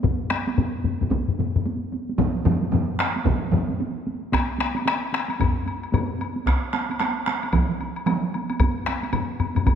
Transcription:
0.03 taiko, taiko low-mid, taiko high
0.30 taiko rim, taiko high
0.47 taiko high
0.58 taiko low-mid, taiko high
0.84 taiko low-mid, taiko high
1.01 taiko low-mid, taiko high
1.11 taiko, taiko low-mid, taiko high
1.28 taiko low-mid
1.39 taiko low-mid, taiko high
1.56 taiko low-mid
1.66 taiko high
1.92 taiko high
2.09 taiko high
2.18 taiko, taiko low-mid, taiko mid, taiko high
2.45 taiko low-mid, taiko mid, taiko high
2.62 taiko high
2.72 taiko low-mid, taiko mid, taiko high
2.99 taiko rim, taiko high
3.16 taiko high
3.26 taiko, taiko low-mid, taiko mid, taiko high
3.52 taiko low-mid, taiko mid, taiko high
3.70 taiko high
3.80 taiko high
4.07 taiko high
4.32 taiko rim, taiko, taiko high, high woodblock
4.58 taiko rim, taiko high, high woodblock
4.75 taiko high, high woodblock
4.86 taiko rim, taiko high, high woodblock
5.13 taiko rim, taiko high, high woodblock
5.28 taiko high, high woodblock
5.40 taiko, taiko low-mid, taiko high, high woodblock
5.66 taiko high, high woodblock
5.83 high woodblock
5.92 taiko low-mid, taiko high, high woodblock
6.19 taiko high, high woodblock
6.36 taiko high
6.46 taiko rim, taiko, taiko high, high woodblock
6.73 taiko rim, taiko high, high woodblock
6.89 taiko high, high woodblock
7.00 taiko rim, taiko high, high woodblock
7.26 taiko rim, taiko high, high woodblock
7.43 taiko high, high woodblock
7.53 taiko, taiko mid, taiko high, high woodblock
7.80 taiko high, high woodblock
7.96 high woodblock
8.06 taiko mid, taiko high, high woodblock
8.34 taiko high, high woodblock
8.50 taiko high, high woodblock
8.60 taiko, taiko low-mid, taiko high, high woodblock
8.86 taiko rim, taiko high, high woodblock
9.03 taiko high, high woodblock
9.13 taiko low-mid, taiko high, high woodblock
9.40 taiko low-mid, taiko high, high woodblock
9.55 taiko low-mid, taiko high, high woodblock
9.66 taiko, taiko low-mid, taiko high, high woodblock

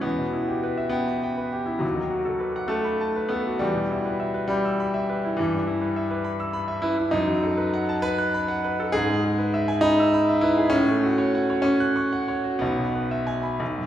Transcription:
0.01 E2 B3
0.18 B2
0.33 E4
0.48 G4
0.63 B4
0.78 E5
0.89 B3 G5
1.08 B5
1.23 G5
1.37 B4
1.53 G4
1.66 E4
1.79 D#2 F#3
1.95 D#3
2.10 F#4
2.25 A4
2.40 B4
2.56 F#5
2.68 A3 A5
2.85 B5
3.01 A5
3.16 B4
3.29 B3 A4
3.47 F#4
3.59 E2 G3
3.75 B2
3.91 E4
4.06 B4
4.20 E5
4.34 B4
4.48 G3 B5
4.65 E6
4.80 B5
4.94 E5
5.09 B4
5.25 E4
5.37 G2 E3
5.54 G3
5.67 E4
5.81 B4
5.96 E5
6.11 B4
6.24 B5
6.40 E6
6.53 B5
6.68 E5
6.82 E4 B4
6.97 E4
7.11 F#2 D#4
7.27 F#3
7.43 A4
7.58 B4
7.74 F#5
7.89 A5
8.02 B4 B5
8.19 F#6
8.34 B5
8.48 F#5
8.64 B4
8.80 A4
8.92 G#2 G#4
9.10 G#3
9.24 G#4
9.38 B4
9.54 E5
9.68 G#5
9.81 D#4 B5
9.99 E6
10.14 B5
10.29 E5
10.41 E4 B4
10.58 G#4
10.70 A2 C#4
10.88 A3
11.03 F#4
11.18 C#5
11.35 F#5
11.50 C#5
11.62 C#4 C#6
11.80 F#6
11.96 C#6
12.13 F#5
12.28 C#5
12.44 F#4
12.59 B1 B3
12.78 B2
12.95 B4
13.11 E5
13.27 G#5
13.43 B5
13.60 B1
13.78 F#2

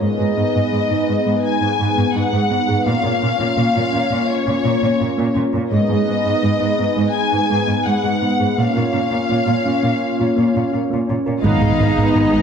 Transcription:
0.01 G#2 G#3 B3 D#4 G#4 B4 D#5
0.19 G#2 G#4
0.37 G#2 B3
0.55 G#2 B3
0.72 G#2 G#3
0.90 G#2 D#4
1.08 G#2 B3
1.26 G#2 G#3
1.45 G#5
1.62 G#2 D#4
1.79 G#2 G#3
1.97 G#2 B3
2.15 G#2 D#4 F#5
2.33 G#2 G#3
2.51 G#2 B3
2.68 G#2 G#4
2.86 A#2 A#3 C#4 F4 C#5 F5
3.04 A#2 A#4
3.22 A#2 C#4
3.40 A#2 C#4
3.57 A#2 A#3
3.75 A#2 F4
3.93 A#2 C#4
4.11 A#2 A#3
4.29 C#5
4.46 A#2 F4
4.64 A#2 A#3
4.82 A#2 C#4
5.00 A#2 F4
5.18 A#2 A#3
5.35 A#2 C#4
5.54 A#2 A#4
5.71 G#2 G#3 B3 D#4 G#4 B4 D#5
5.90 G#2 G#4
6.08 G#2 B3
6.26 G#2 B3
6.43 G#2 G#3
6.60 G#2 D#4
6.79 G#2 B3
6.97 G#2 G#3
7.15 G#5
7.32 G#2 D#4
7.50 G#2 G#3
7.68 G#2 B3
7.86 G#2 D#4 F#5
8.04 G#2 G#3
8.21 G#2 B3
8.40 G#2 G#4
8.57 A#2 A#3 C#4 F4 C#5 F5
8.76 A#2 A#4
8.93 A#2 C#4
9.11 A#2 C#4
9.29 A#2 A#3
9.47 A#2 F4
9.66 A#2 C#4
9.83 A#2 A#3
10.19 A#2 F4
10.36 A#2 A#3
10.54 A#2 C#4
10.72 A#2 F4
10.90 A#2 A#3
11.08 A#2 C#4
11.26 A#2 A#4
11.43 G#1 G#2 D#3 G#3 B3 D#4 G#4 B4 D#5 F5, impact
11.62 G#1 G#2 G#3 G#4
11.79 G#1 G#2 D#3 B3
11.97 G#1 G#2 G#3 B3
12.15 G#1 G#2 G#3 B3 D#5
12.33 G#1 G#3

